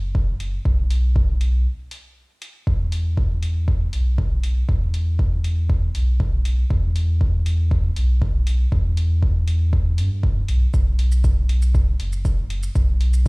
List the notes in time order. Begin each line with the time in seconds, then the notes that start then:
Already playing: F#1
0.15 kick
0.40 open hi-hat
0.65 B1, kick
0.91 open hi-hat
1.16 kick
1.41 open hi-hat
1.91 open hi-hat
2.42 open hi-hat
2.67 E2, kick
2.92 open hi-hat
3.17 kick
3.43 open hi-hat
3.68 kick
3.93 B1, open hi-hat
4.18 kick
4.43 open hi-hat
4.69 E2, kick
4.94 open hi-hat
5.19 kick
5.44 open hi-hat
5.70 kick
5.95 B1, open hi-hat
6.20 kick
6.45 open hi-hat
6.70 E2, kick
6.96 open hi-hat
7.21 kick
7.46 open hi-hat
7.71 kick
7.96 B1, open hi-hat
8.22 kick
8.47 open hi-hat
8.72 E2, kick
8.97 open hi-hat
9.23 kick
9.48 open hi-hat
9.73 kick
9.98 G2, open hi-hat
10.23 kick
10.48 B1, open hi-hat
10.74 B1, kick, shaker
10.99 open hi-hat
11.12 shaker
11.24 kick, shaker
11.49 open hi-hat
11.62 shaker
11.75 kick, shaker
12.00 F#1, open hi-hat
12.12 shaker
12.25 kick, shaker
12.50 open hi-hat
12.63 shaker
12.75 B1, kick, shaker
13.01 open hi-hat
13.13 shaker